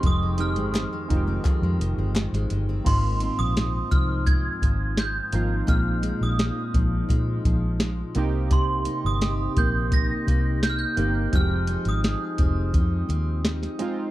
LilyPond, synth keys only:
\new Staff \with { instrumentName = "Synth keys" } { \time 4/4 \key f \minor \tempo 4 = 85 <aes c' ees' g'>8 <aes c' ees' g'>4 <aes c' ees' f' g'>4. r4 | <bes c' ees' f'>4. r2 <bes c' ees' f'>8 | <aes c' ees' f'>4. r2 <bes c' ees' g'>8~ | <bes c' ees' g'>4 r2 r8 <bes c' ees' g'>8 |
<aes c' ees' ges' g'>4. r2 <aes c' ees' f'>8 | }